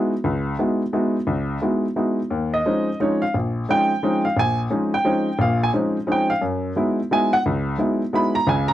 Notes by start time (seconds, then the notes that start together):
Already playing: G#3 B3 D#4 E4 F#4
0.24 C#2
0.59 G#3 B3 D#4 E4 F#4
0.93 G#3 B3 D#4 E4 F#4
1.27 C#2
1.62 G#3 B3 D#4 E4 F#4
1.96 G#3 B3 D#4 E4 F#4
2.30 D#2
2.54 D#5
2.65 F3 G#3 C4 C#4 D#4
3.00 F3 G#3 C4 C#4 D#4 C#5
3.22 F5
3.34 A#1
3.69 F3 G#3 C4 C#4 D#4 G5
4.03 F3 G#3 C4 C#4 D#4
4.25 F5
4.37 A#1 G#5
4.70 F3 G#3 C4 C#4 D#4
4.94 G5
5.05 F3 G#3 C4 C#4 D#4
5.39 A#1 A#2 F5
5.63 G#5
5.73 F3 G#3 C4 C#4 D#4
6.07 F3 G#3 C4 C#4 D#4
6.12 G5
6.30 F5
6.41 F#2
6.76 F#3 G#3 B3 D#4 E4
7.11 F#3 G#3 B3 D#4 E4 G#5
7.33 F#5
7.46 C#2
7.78 F#3 G#3 B3 D#4 E4
8.13 F#3 G#3 B3 D#4 E4 B5
8.35 A#5
8.47 C#2 C#3 G#5
8.68 A#5